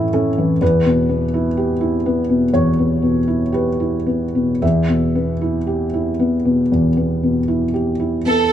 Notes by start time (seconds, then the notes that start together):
Already playing: A2 E3 C#4 E4 A4 E5
0.13 C#4 A4
0.38 E3
0.61 E2 B4
0.85 B2
1.09 B3
1.34 E4
1.57 G4
1.81 E4
2.06 B3
2.29 B2
2.54 E2 C#5
2.79 B3
3.02 B2
3.28 E4
3.52 G4 B4
3.80 E4
4.07 B3
4.35 B2
4.62 E2 E5
4.89 B2
5.15 B3
5.41 E4
5.67 G4
5.94 E4
6.19 B3
6.45 B2
6.72 E2
6.97 B3
7.23 B2
7.48 E4
7.74 G4
8.00 E4
8.26 B3 A4